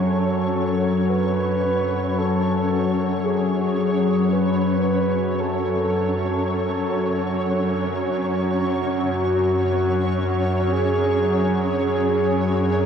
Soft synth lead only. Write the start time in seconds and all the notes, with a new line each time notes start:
0.02 A4
1.09 B4
2.18 A4
3.24 G#4
4.32 B4
5.40 A4
6.48 A4
8.61 F#4
10.72 G#4
11.78 G#4